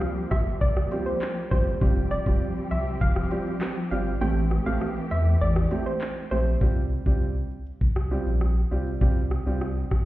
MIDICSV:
0, 0, Header, 1, 6, 480
1, 0, Start_track
1, 0, Tempo, 600000
1, 1450, Time_signature, 4, 2, 24, 8
1, 8040, End_track
2, 0, Start_track
2, 0, Title_t, "Synth pluck"
2, 0, Program_c, 0, 84
2, 248, Note_on_c, 0, 76, 82
2, 355, Note_off_c, 0, 76, 0
2, 489, Note_on_c, 0, 74, 92
2, 595, Note_off_c, 0, 74, 0
2, 849, Note_on_c, 0, 72, 74
2, 955, Note_off_c, 0, 72, 0
2, 1210, Note_on_c, 0, 72, 89
2, 1316, Note_off_c, 0, 72, 0
2, 1689, Note_on_c, 0, 74, 89
2, 1795, Note_off_c, 0, 74, 0
2, 2168, Note_on_c, 0, 76, 80
2, 2275, Note_off_c, 0, 76, 0
2, 2409, Note_on_c, 0, 77, 94
2, 2748, Note_off_c, 0, 77, 0
2, 3131, Note_on_c, 0, 77, 75
2, 3236, Note_off_c, 0, 77, 0
2, 3371, Note_on_c, 0, 79, 97
2, 3582, Note_off_c, 0, 79, 0
2, 3730, Note_on_c, 0, 77, 80
2, 3836, Note_off_c, 0, 77, 0
2, 4089, Note_on_c, 0, 76, 85
2, 4196, Note_off_c, 0, 76, 0
2, 4331, Note_on_c, 0, 74, 93
2, 4437, Note_off_c, 0, 74, 0
2, 4690, Note_on_c, 0, 72, 73
2, 4796, Note_off_c, 0, 72, 0
2, 5050, Note_on_c, 0, 72, 86
2, 5156, Note_off_c, 0, 72, 0
2, 8040, End_track
3, 0, Start_track
3, 0, Title_t, "Grand piano"
3, 0, Program_c, 1, 0
3, 730, Note_on_c, 1, 55, 81
3, 732, Note_on_c, 1, 60, 69
3, 733, Note_on_c, 1, 65, 72
3, 735, Note_on_c, 1, 67, 86
3, 870, Note_off_c, 1, 55, 0
3, 871, Note_off_c, 1, 60, 0
3, 872, Note_off_c, 1, 65, 0
3, 873, Note_off_c, 1, 67, 0
3, 1209, Note_on_c, 1, 55, 77
3, 1212, Note_on_c, 1, 60, 72
3, 1212, Note_on_c, 1, 65, 70
3, 1215, Note_on_c, 1, 67, 88
3, 1350, Note_off_c, 1, 55, 0
3, 1351, Note_off_c, 1, 60, 0
3, 1351, Note_off_c, 1, 65, 0
3, 1353, Note_off_c, 1, 67, 0
3, 1450, Note_on_c, 1, 55, 93
3, 1452, Note_on_c, 1, 60, 83
3, 1453, Note_on_c, 1, 65, 87
3, 1455, Note_on_c, 1, 67, 102
3, 1590, Note_off_c, 1, 55, 0
3, 1591, Note_off_c, 1, 60, 0
3, 1592, Note_off_c, 1, 65, 0
3, 1593, Note_off_c, 1, 67, 0
3, 1810, Note_on_c, 1, 55, 78
3, 1811, Note_on_c, 1, 60, 72
3, 1813, Note_on_c, 1, 65, 72
3, 1815, Note_on_c, 1, 67, 89
3, 1950, Note_off_c, 1, 55, 0
3, 1951, Note_off_c, 1, 60, 0
3, 1952, Note_off_c, 1, 65, 0
3, 1953, Note_off_c, 1, 67, 0
3, 2650, Note_on_c, 1, 55, 80
3, 2651, Note_on_c, 1, 60, 72
3, 2653, Note_on_c, 1, 65, 70
3, 2653, Note_on_c, 1, 67, 88
3, 2790, Note_off_c, 1, 55, 0
3, 2791, Note_off_c, 1, 60, 0
3, 2792, Note_off_c, 1, 65, 0
3, 2792, Note_off_c, 1, 67, 0
3, 3129, Note_on_c, 1, 55, 76
3, 3131, Note_on_c, 1, 60, 72
3, 3132, Note_on_c, 1, 65, 70
3, 3133, Note_on_c, 1, 67, 89
3, 3270, Note_off_c, 1, 55, 0
3, 3271, Note_off_c, 1, 60, 0
3, 3271, Note_off_c, 1, 65, 0
3, 3272, Note_off_c, 1, 67, 0
3, 3367, Note_on_c, 1, 57, 94
3, 3368, Note_on_c, 1, 60, 87
3, 3369, Note_on_c, 1, 64, 83
3, 3372, Note_on_c, 1, 67, 104
3, 3509, Note_off_c, 1, 57, 0
3, 3509, Note_off_c, 1, 60, 0
3, 3510, Note_off_c, 1, 64, 0
3, 3511, Note_off_c, 1, 67, 0
3, 3728, Note_on_c, 1, 57, 83
3, 3729, Note_on_c, 1, 60, 73
3, 3731, Note_on_c, 1, 64, 70
3, 3732, Note_on_c, 1, 67, 88
3, 3869, Note_off_c, 1, 57, 0
3, 3870, Note_off_c, 1, 60, 0
3, 3871, Note_off_c, 1, 64, 0
3, 3871, Note_off_c, 1, 67, 0
3, 4567, Note_on_c, 1, 57, 76
3, 4568, Note_on_c, 1, 60, 73
3, 4571, Note_on_c, 1, 64, 71
3, 4572, Note_on_c, 1, 67, 88
3, 4709, Note_off_c, 1, 57, 0
3, 4709, Note_off_c, 1, 60, 0
3, 4710, Note_off_c, 1, 64, 0
3, 4711, Note_off_c, 1, 67, 0
3, 5049, Note_on_c, 1, 57, 77
3, 5050, Note_on_c, 1, 60, 69
3, 5052, Note_on_c, 1, 64, 69
3, 5053, Note_on_c, 1, 67, 84
3, 5190, Note_off_c, 1, 57, 0
3, 5190, Note_off_c, 1, 60, 0
3, 5191, Note_off_c, 1, 64, 0
3, 5192, Note_off_c, 1, 67, 0
3, 5288, Note_on_c, 1, 55, 91
3, 5290, Note_on_c, 1, 60, 81
3, 5291, Note_on_c, 1, 65, 81
3, 5293, Note_on_c, 1, 67, 102
3, 5429, Note_off_c, 1, 55, 0
3, 5430, Note_off_c, 1, 60, 0
3, 5431, Note_off_c, 1, 65, 0
3, 5432, Note_off_c, 1, 67, 0
3, 5647, Note_on_c, 1, 55, 79
3, 5650, Note_on_c, 1, 60, 73
3, 5650, Note_on_c, 1, 65, 68
3, 5653, Note_on_c, 1, 67, 87
3, 5789, Note_off_c, 1, 55, 0
3, 5790, Note_off_c, 1, 60, 0
3, 5790, Note_off_c, 1, 65, 0
3, 5792, Note_off_c, 1, 67, 0
3, 6488, Note_on_c, 1, 55, 77
3, 6490, Note_on_c, 1, 60, 69
3, 6490, Note_on_c, 1, 65, 67
3, 6493, Note_on_c, 1, 67, 86
3, 6629, Note_off_c, 1, 55, 0
3, 6630, Note_off_c, 1, 60, 0
3, 6630, Note_off_c, 1, 65, 0
3, 6632, Note_off_c, 1, 67, 0
3, 6969, Note_on_c, 1, 55, 72
3, 6970, Note_on_c, 1, 60, 66
3, 6972, Note_on_c, 1, 65, 70
3, 6973, Note_on_c, 1, 67, 81
3, 7110, Note_off_c, 1, 55, 0
3, 7110, Note_off_c, 1, 60, 0
3, 7111, Note_off_c, 1, 65, 0
3, 7112, Note_off_c, 1, 67, 0
3, 7209, Note_on_c, 1, 55, 91
3, 7211, Note_on_c, 1, 60, 82
3, 7212, Note_on_c, 1, 65, 82
3, 7213, Note_on_c, 1, 67, 99
3, 7350, Note_off_c, 1, 55, 0
3, 7351, Note_off_c, 1, 60, 0
3, 7351, Note_off_c, 1, 65, 0
3, 7352, Note_off_c, 1, 67, 0
3, 7570, Note_on_c, 1, 55, 78
3, 7571, Note_on_c, 1, 60, 71
3, 7572, Note_on_c, 1, 65, 70
3, 7575, Note_on_c, 1, 67, 83
3, 7710, Note_off_c, 1, 55, 0
3, 7711, Note_off_c, 1, 60, 0
3, 7711, Note_off_c, 1, 65, 0
3, 7712, Note_off_c, 1, 67, 0
3, 8040, End_track
4, 0, Start_track
4, 0, Title_t, "String section"
4, 0, Program_c, 2, 48
4, 0, Note_on_c, 2, 53, 85
4, 0, Note_on_c, 2, 55, 82
4, 0, Note_on_c, 2, 58, 81
4, 0, Note_on_c, 2, 67, 93
4, 1419, Note_off_c, 2, 53, 0
4, 1419, Note_off_c, 2, 67, 0
4, 1432, Note_off_c, 2, 58, 0
4, 1450, Note_on_c, 2, 60, 77
4, 1451, Note_on_c, 2, 53, 90
4, 1451, Note_on_c, 2, 67, 96
4, 3340, Note_off_c, 2, 55, 0
4, 3351, Note_off_c, 2, 67, 0
4, 3352, Note_off_c, 2, 53, 0
4, 3371, Note_on_c, 2, 52, 88
4, 3372, Note_on_c, 2, 57, 82
4, 3372, Note_on_c, 2, 67, 101
4, 5258, Note_off_c, 2, 60, 0
4, 5272, Note_off_c, 2, 52, 0
4, 5272, Note_off_c, 2, 57, 0
4, 5272, Note_off_c, 2, 67, 0
4, 8040, End_track
5, 0, Start_track
5, 0, Title_t, "Sub bass"
5, 0, Program_c, 3, 38
5, 251, Note_on_c, 3, 31, 89
5, 456, Note_off_c, 3, 31, 0
5, 490, Note_on_c, 3, 36, 108
5, 696, Note_off_c, 3, 36, 0
5, 1211, Note_on_c, 3, 31, 98
5, 1416, Note_off_c, 3, 31, 0
5, 1452, Note_on_c, 3, 29, 106
5, 1759, Note_off_c, 3, 29, 0
5, 1810, Note_on_c, 3, 29, 100
5, 1913, Note_off_c, 3, 29, 0
5, 2169, Note_on_c, 3, 36, 91
5, 2375, Note_off_c, 3, 36, 0
5, 2410, Note_on_c, 3, 29, 104
5, 2615, Note_off_c, 3, 29, 0
5, 3130, Note_on_c, 3, 31, 101
5, 3335, Note_off_c, 3, 31, 0
5, 3370, Note_on_c, 3, 33, 115
5, 3678, Note_off_c, 3, 33, 0
5, 3731, Note_on_c, 3, 33, 93
5, 3834, Note_off_c, 3, 33, 0
5, 4091, Note_on_c, 3, 40, 92
5, 4296, Note_off_c, 3, 40, 0
5, 4330, Note_on_c, 3, 33, 113
5, 4536, Note_off_c, 3, 33, 0
5, 5050, Note_on_c, 3, 34, 97
5, 5255, Note_off_c, 3, 34, 0
5, 5290, Note_on_c, 3, 36, 108
5, 5598, Note_off_c, 3, 36, 0
5, 5649, Note_on_c, 3, 36, 98
5, 5958, Note_off_c, 3, 36, 0
5, 6250, Note_on_c, 3, 36, 104
5, 6558, Note_off_c, 3, 36, 0
5, 6610, Note_on_c, 3, 34, 93
5, 6918, Note_off_c, 3, 34, 0
5, 6970, Note_on_c, 3, 36, 97
5, 7175, Note_off_c, 3, 36, 0
5, 7210, Note_on_c, 3, 36, 109
5, 7518, Note_off_c, 3, 36, 0
5, 7571, Note_on_c, 3, 36, 102
5, 7879, Note_off_c, 3, 36, 0
5, 8040, End_track
6, 0, Start_track
6, 0, Title_t, "Drums"
6, 10, Note_on_c, 9, 37, 95
6, 11, Note_on_c, 9, 82, 81
6, 90, Note_off_c, 9, 37, 0
6, 91, Note_off_c, 9, 82, 0
6, 132, Note_on_c, 9, 82, 49
6, 212, Note_off_c, 9, 82, 0
6, 251, Note_on_c, 9, 36, 94
6, 251, Note_on_c, 9, 37, 100
6, 251, Note_on_c, 9, 42, 68
6, 251, Note_on_c, 9, 82, 50
6, 253, Note_on_c, 9, 69, 84
6, 253, Note_on_c, 9, 76, 82
6, 331, Note_off_c, 9, 36, 0
6, 331, Note_off_c, 9, 37, 0
6, 331, Note_off_c, 9, 42, 0
6, 331, Note_off_c, 9, 82, 0
6, 333, Note_off_c, 9, 69, 0
6, 333, Note_off_c, 9, 76, 0
6, 371, Note_on_c, 9, 82, 84
6, 451, Note_off_c, 9, 82, 0
6, 491, Note_on_c, 9, 36, 93
6, 491, Note_on_c, 9, 82, 83
6, 571, Note_off_c, 9, 36, 0
6, 571, Note_off_c, 9, 82, 0
6, 612, Note_on_c, 9, 82, 54
6, 613, Note_on_c, 9, 37, 97
6, 692, Note_off_c, 9, 82, 0
6, 693, Note_off_c, 9, 37, 0
6, 731, Note_on_c, 9, 42, 76
6, 731, Note_on_c, 9, 69, 80
6, 731, Note_on_c, 9, 76, 78
6, 731, Note_on_c, 9, 82, 57
6, 811, Note_off_c, 9, 42, 0
6, 811, Note_off_c, 9, 69, 0
6, 811, Note_off_c, 9, 76, 0
6, 811, Note_off_c, 9, 82, 0
6, 854, Note_on_c, 9, 82, 82
6, 934, Note_off_c, 9, 82, 0
6, 972, Note_on_c, 9, 76, 82
6, 973, Note_on_c, 9, 39, 105
6, 974, Note_on_c, 9, 82, 65
6, 1052, Note_off_c, 9, 76, 0
6, 1053, Note_off_c, 9, 39, 0
6, 1054, Note_off_c, 9, 82, 0
6, 1094, Note_on_c, 9, 82, 55
6, 1174, Note_off_c, 9, 82, 0
6, 1212, Note_on_c, 9, 36, 103
6, 1214, Note_on_c, 9, 69, 64
6, 1215, Note_on_c, 9, 42, 81
6, 1215, Note_on_c, 9, 82, 55
6, 1292, Note_off_c, 9, 36, 0
6, 1294, Note_off_c, 9, 69, 0
6, 1295, Note_off_c, 9, 42, 0
6, 1295, Note_off_c, 9, 82, 0
6, 1333, Note_on_c, 9, 82, 85
6, 1413, Note_off_c, 9, 82, 0
6, 1452, Note_on_c, 9, 36, 127
6, 1452, Note_on_c, 9, 76, 84
6, 1452, Note_on_c, 9, 82, 75
6, 1532, Note_off_c, 9, 36, 0
6, 1532, Note_off_c, 9, 76, 0
6, 1532, Note_off_c, 9, 82, 0
6, 1572, Note_on_c, 9, 82, 51
6, 1652, Note_off_c, 9, 82, 0
6, 1691, Note_on_c, 9, 42, 79
6, 1691, Note_on_c, 9, 82, 55
6, 1695, Note_on_c, 9, 69, 81
6, 1771, Note_off_c, 9, 42, 0
6, 1771, Note_off_c, 9, 82, 0
6, 1775, Note_off_c, 9, 69, 0
6, 1810, Note_on_c, 9, 36, 92
6, 1810, Note_on_c, 9, 76, 73
6, 1812, Note_on_c, 9, 82, 82
6, 1890, Note_off_c, 9, 36, 0
6, 1890, Note_off_c, 9, 76, 0
6, 1892, Note_off_c, 9, 82, 0
6, 1932, Note_on_c, 9, 82, 81
6, 2012, Note_off_c, 9, 82, 0
6, 2052, Note_on_c, 9, 82, 54
6, 2132, Note_off_c, 9, 82, 0
6, 2170, Note_on_c, 9, 42, 66
6, 2170, Note_on_c, 9, 82, 49
6, 2173, Note_on_c, 9, 69, 80
6, 2173, Note_on_c, 9, 76, 81
6, 2250, Note_off_c, 9, 42, 0
6, 2250, Note_off_c, 9, 82, 0
6, 2253, Note_off_c, 9, 69, 0
6, 2253, Note_off_c, 9, 76, 0
6, 2290, Note_on_c, 9, 82, 83
6, 2370, Note_off_c, 9, 82, 0
6, 2408, Note_on_c, 9, 82, 90
6, 2410, Note_on_c, 9, 36, 91
6, 2488, Note_off_c, 9, 82, 0
6, 2490, Note_off_c, 9, 36, 0
6, 2528, Note_on_c, 9, 82, 52
6, 2529, Note_on_c, 9, 37, 96
6, 2608, Note_off_c, 9, 82, 0
6, 2609, Note_off_c, 9, 37, 0
6, 2648, Note_on_c, 9, 69, 79
6, 2648, Note_on_c, 9, 76, 76
6, 2649, Note_on_c, 9, 42, 79
6, 2649, Note_on_c, 9, 82, 60
6, 2728, Note_off_c, 9, 69, 0
6, 2728, Note_off_c, 9, 76, 0
6, 2729, Note_off_c, 9, 42, 0
6, 2729, Note_off_c, 9, 82, 0
6, 2771, Note_on_c, 9, 82, 78
6, 2851, Note_off_c, 9, 82, 0
6, 2890, Note_on_c, 9, 37, 99
6, 2890, Note_on_c, 9, 39, 99
6, 2891, Note_on_c, 9, 76, 81
6, 2891, Note_on_c, 9, 82, 65
6, 2970, Note_off_c, 9, 37, 0
6, 2970, Note_off_c, 9, 39, 0
6, 2971, Note_off_c, 9, 76, 0
6, 2971, Note_off_c, 9, 82, 0
6, 3012, Note_on_c, 9, 82, 56
6, 3092, Note_off_c, 9, 82, 0
6, 3131, Note_on_c, 9, 69, 68
6, 3133, Note_on_c, 9, 42, 84
6, 3133, Note_on_c, 9, 82, 55
6, 3211, Note_off_c, 9, 69, 0
6, 3213, Note_off_c, 9, 42, 0
6, 3213, Note_off_c, 9, 82, 0
6, 3252, Note_on_c, 9, 82, 84
6, 3332, Note_off_c, 9, 82, 0
6, 3369, Note_on_c, 9, 76, 90
6, 3370, Note_on_c, 9, 82, 75
6, 3449, Note_off_c, 9, 76, 0
6, 3450, Note_off_c, 9, 82, 0
6, 3491, Note_on_c, 9, 82, 50
6, 3571, Note_off_c, 9, 82, 0
6, 3609, Note_on_c, 9, 37, 92
6, 3609, Note_on_c, 9, 42, 74
6, 3609, Note_on_c, 9, 82, 54
6, 3613, Note_on_c, 9, 69, 80
6, 3689, Note_off_c, 9, 37, 0
6, 3689, Note_off_c, 9, 42, 0
6, 3689, Note_off_c, 9, 82, 0
6, 3693, Note_off_c, 9, 69, 0
6, 3728, Note_on_c, 9, 76, 70
6, 3730, Note_on_c, 9, 82, 80
6, 3808, Note_off_c, 9, 76, 0
6, 3810, Note_off_c, 9, 82, 0
6, 3851, Note_on_c, 9, 37, 96
6, 3852, Note_on_c, 9, 82, 79
6, 3931, Note_off_c, 9, 37, 0
6, 3932, Note_off_c, 9, 82, 0
6, 3971, Note_on_c, 9, 82, 52
6, 4051, Note_off_c, 9, 82, 0
6, 4090, Note_on_c, 9, 42, 72
6, 4090, Note_on_c, 9, 82, 48
6, 4091, Note_on_c, 9, 69, 80
6, 4091, Note_on_c, 9, 76, 83
6, 4170, Note_off_c, 9, 42, 0
6, 4170, Note_off_c, 9, 82, 0
6, 4171, Note_off_c, 9, 69, 0
6, 4171, Note_off_c, 9, 76, 0
6, 4211, Note_on_c, 9, 82, 86
6, 4291, Note_off_c, 9, 82, 0
6, 4328, Note_on_c, 9, 82, 89
6, 4408, Note_off_c, 9, 82, 0
6, 4448, Note_on_c, 9, 82, 51
6, 4449, Note_on_c, 9, 37, 97
6, 4528, Note_off_c, 9, 82, 0
6, 4529, Note_off_c, 9, 37, 0
6, 4568, Note_on_c, 9, 42, 80
6, 4568, Note_on_c, 9, 82, 58
6, 4569, Note_on_c, 9, 69, 77
6, 4569, Note_on_c, 9, 76, 80
6, 4648, Note_off_c, 9, 42, 0
6, 4648, Note_off_c, 9, 82, 0
6, 4649, Note_off_c, 9, 69, 0
6, 4649, Note_off_c, 9, 76, 0
6, 4690, Note_on_c, 9, 82, 83
6, 4770, Note_off_c, 9, 82, 0
6, 4809, Note_on_c, 9, 39, 102
6, 4809, Note_on_c, 9, 76, 80
6, 4810, Note_on_c, 9, 82, 65
6, 4889, Note_off_c, 9, 39, 0
6, 4889, Note_off_c, 9, 76, 0
6, 4890, Note_off_c, 9, 82, 0
6, 4931, Note_on_c, 9, 82, 57
6, 5011, Note_off_c, 9, 82, 0
6, 5051, Note_on_c, 9, 69, 67
6, 5052, Note_on_c, 9, 42, 81
6, 5052, Note_on_c, 9, 82, 58
6, 5131, Note_off_c, 9, 69, 0
6, 5132, Note_off_c, 9, 42, 0
6, 5132, Note_off_c, 9, 82, 0
6, 5172, Note_on_c, 9, 82, 83
6, 5252, Note_off_c, 9, 82, 0
6, 5289, Note_on_c, 9, 82, 74
6, 5290, Note_on_c, 9, 36, 123
6, 5369, Note_off_c, 9, 82, 0
6, 5370, Note_off_c, 9, 36, 0
6, 5411, Note_on_c, 9, 82, 49
6, 5491, Note_off_c, 9, 82, 0
6, 5528, Note_on_c, 9, 82, 53
6, 5608, Note_off_c, 9, 82, 0
6, 5649, Note_on_c, 9, 36, 90
6, 5650, Note_on_c, 9, 82, 76
6, 5729, Note_off_c, 9, 36, 0
6, 5730, Note_off_c, 9, 82, 0
6, 5770, Note_on_c, 9, 82, 79
6, 5850, Note_off_c, 9, 82, 0
6, 5890, Note_on_c, 9, 82, 47
6, 5970, Note_off_c, 9, 82, 0
6, 6009, Note_on_c, 9, 82, 49
6, 6089, Note_off_c, 9, 82, 0
6, 6129, Note_on_c, 9, 82, 80
6, 6209, Note_off_c, 9, 82, 0
6, 6248, Note_on_c, 9, 82, 82
6, 6250, Note_on_c, 9, 36, 89
6, 6328, Note_off_c, 9, 82, 0
6, 6330, Note_off_c, 9, 36, 0
6, 6368, Note_on_c, 9, 82, 50
6, 6369, Note_on_c, 9, 37, 95
6, 6448, Note_off_c, 9, 82, 0
6, 6449, Note_off_c, 9, 37, 0
6, 6488, Note_on_c, 9, 82, 55
6, 6568, Note_off_c, 9, 82, 0
6, 6610, Note_on_c, 9, 82, 78
6, 6690, Note_off_c, 9, 82, 0
6, 6729, Note_on_c, 9, 37, 93
6, 6729, Note_on_c, 9, 82, 60
6, 6809, Note_off_c, 9, 37, 0
6, 6809, Note_off_c, 9, 82, 0
6, 6851, Note_on_c, 9, 82, 56
6, 6931, Note_off_c, 9, 82, 0
6, 6974, Note_on_c, 9, 82, 57
6, 7054, Note_off_c, 9, 82, 0
6, 7092, Note_on_c, 9, 82, 80
6, 7172, Note_off_c, 9, 82, 0
6, 7209, Note_on_c, 9, 82, 71
6, 7210, Note_on_c, 9, 36, 118
6, 7289, Note_off_c, 9, 82, 0
6, 7290, Note_off_c, 9, 36, 0
6, 7330, Note_on_c, 9, 82, 51
6, 7410, Note_off_c, 9, 82, 0
6, 7449, Note_on_c, 9, 82, 51
6, 7450, Note_on_c, 9, 37, 85
6, 7529, Note_off_c, 9, 82, 0
6, 7530, Note_off_c, 9, 37, 0
6, 7570, Note_on_c, 9, 82, 75
6, 7650, Note_off_c, 9, 82, 0
6, 7691, Note_on_c, 9, 37, 91
6, 7692, Note_on_c, 9, 82, 76
6, 7771, Note_off_c, 9, 37, 0
6, 7772, Note_off_c, 9, 82, 0
6, 7811, Note_on_c, 9, 82, 50
6, 7891, Note_off_c, 9, 82, 0
6, 7931, Note_on_c, 9, 36, 90
6, 7931, Note_on_c, 9, 37, 99
6, 7931, Note_on_c, 9, 82, 50
6, 8011, Note_off_c, 9, 36, 0
6, 8011, Note_off_c, 9, 37, 0
6, 8011, Note_off_c, 9, 82, 0
6, 8040, End_track
0, 0, End_of_file